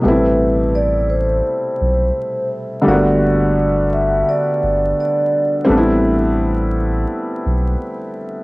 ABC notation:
X:1
M:4/4
L:1/16
Q:"Swing 16ths" 1/4=85
K:Ador
V:1 name="Vibraphone"
B4 d2 c8 z2 | d6 e2 d4 d3 z | z16 |]
V:2 name="Felt piano"
[B,,G,A,CE]16 | [D,G,A,_B,=B,F]16 | [G,A,B,CDE]16 |]
V:3 name="Sub bass" clef=bass
A,,,8 z2 B,,,2 z4 | G,,,8 z2 G,,,2 z4 | A,,,8 z2 B,,,2 z4 |]